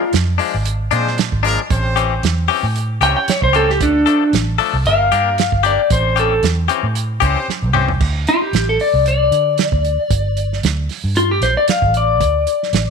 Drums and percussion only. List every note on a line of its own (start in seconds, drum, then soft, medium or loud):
0.13 snare loud
0.13 closed hi-hat medium
0.39 open hi-hat medium
0.65 closed hi-hat medium
0.91 closed hi-hat medium
1.07 snare soft
1.18 snare loud
1.18 closed hi-hat medium
1.32 kick medium
1.44 closed hi-hat medium
1.70 kick loud
1.70 closed hi-hat medium
1.97 closed hi-hat medium
2.23 snare loud
2.23 closed hi-hat medium
2.49 open hi-hat medium
2.76 closed hi-hat medium
3.02 closed hi-hat medium
3.28 snare loud
3.28 closed hi-hat medium
3.42 kick medium
3.54 closed hi-hat soft
3.70 snare soft
3.81 kick loud
3.81 closed hi-hat medium
4.07 closed hi-hat medium
4.33 snare medium
4.33 closed hi-hat medium
4.59 open hi-hat medium
4.86 closed hi-hat medium
5.12 closed hi-hat medium
5.38 snare loud
5.38 closed hi-hat medium
5.52 kick medium
5.65 closed hi-hat medium
5.90 kick loud
5.90 closed hi-hat medium
6.17 closed hi-hat medium
6.43 snare medium
6.43 closed hi-hat medium
6.69 closed hi-hat medium
6.95 closed hi-hat medium
7.22 kick medium
7.22 closed hi-hat medium
7.50 snare medium
7.74 mid tom medium
7.89 floor tom medium
8.01 kick loud
8.01 crash loud
8.27 closed hi-hat medium
8.53 snare loud
8.53 closed hi-hat medium
8.80 open hi-hat medium
9.06 closed hi-hat medium
9.32 closed hi-hat medium
9.58 snare loud
9.58 closed hi-hat medium
9.72 kick medium
9.85 closed hi-hat medium
10.11 kick loud
10.11 closed hi-hat medium
10.37 closed hi-hat medium
10.53 snare soft
10.63 snare loud
10.63 closed hi-hat medium
10.89 snare soft
10.89 open hi-hat medium
11.16 closed hi-hat medium
11.42 snare soft
11.42 closed hi-hat medium
11.68 snare loud
11.68 closed hi-hat medium
11.82 kick medium
11.94 closed hi-hat medium
12.21 kick loud
12.21 closed hi-hat medium
12.47 closed hi-hat medium
12.63 snare soft
12.73 snare loud
12.73 closed hi-hat medium